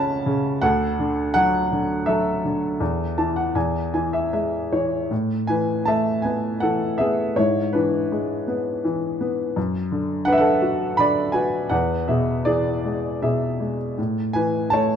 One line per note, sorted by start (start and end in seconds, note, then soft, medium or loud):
0.00 0.59 C#2 medium
0.00 0.26 C#3 medium
0.00 0.65 C#4 medium
0.00 0.65 G4 medium
0.00 0.65 E5 medium
0.00 0.61 F#5 medium
0.00 0.65 A5 medium
0.00 0.65 B5 medium
0.26 0.62 C#3 medium
0.61 2.76 D2 medium
0.61 1.68 A4 medium
0.61 1.31 F#5 medium
0.99 1.71 D3 medium
1.34 2.06 F#3 medium
1.34 2.03 F#5 loud
1.72 2.43 D3 soft
2.06 2.78 F#3 soft
2.06 4.29 A4 medium
2.06 4.12 E5 medium
2.45 2.80 D3 soft
2.80 3.53 E2 medium
3.18 3.54 E3 soft
3.18 3.35 A5 medium
3.36 3.54 F#5 soft
3.55 5.07 E2 medium
3.55 3.91 G#5 medium
3.94 4.71 E3 soft
3.94 4.12 G#5 medium
4.13 4.31 E5 medium
4.33 5.09 G#3 soft
4.33 4.69 E5 soft
4.72 5.10 E3 soft
4.72 5.08 C#5 medium
5.11 7.33 A2 soft
5.47 6.61 E3 soft
5.47 5.84 B4 soft
5.47 5.83 G#5 medium
5.85 7.33 A3 soft
5.85 6.22 E5 medium
5.85 6.25 A5 medium
6.22 6.99 B3 soft
6.22 6.59 B4 soft
6.22 6.62 G#5 medium
6.60 7.35 E3 soft
6.60 6.97 A4 medium
6.60 6.96 F#5 medium
6.98 7.36 B3 soft
6.98 7.35 G#4 soft
6.98 7.37 E5 medium
7.36 9.53 G#2 soft
7.36 7.72 E4 soft
7.36 7.75 C#5 medium
7.73 8.83 E3 soft
7.73 8.44 D4 soft
7.73 8.43 B4 medium
8.12 9.53 G#3 soft
8.48 9.19 B3 soft
8.85 9.54 E3 soft
9.21 9.55 B3 soft
9.56 11.68 F#2 medium
9.92 10.97 D3 soft
10.25 11.67 D4 soft
10.25 10.34 B4 medium
10.25 10.32 F#5 medium
10.32 10.40 E5 medium
10.38 10.95 A4 medium
10.38 10.93 F#5 medium
10.62 11.33 F#4 soft
10.97 11.69 D3 soft
10.97 11.33 D5 medium
10.97 11.35 B5 medium
11.32 11.70 F#4 soft
11.32 11.69 B4 medium
11.32 11.72 G#5 medium
11.69 13.93 E2 medium
11.69 12.07 B4 medium
11.69 12.05 F#5 medium
12.08 13.21 B2 soft
12.08 12.44 G#4 soft
12.08 12.47 E5 soft
12.45 13.94 E3 soft
12.45 13.18 G#4 medium
12.45 13.24 D5 medium
12.85 13.59 G#3 soft
13.22 13.95 B2 soft
13.22 13.76 G#4 soft
13.22 13.75 E5 soft
13.60 13.97 G#3 soft
13.98 14.96 A2 soft
14.33 14.96 E3 soft
14.33 14.70 B4 soft
14.33 14.73 G#5 medium
14.70 14.96 A3 soft
14.70 14.96 C#5 medium
14.70 14.96 A5 medium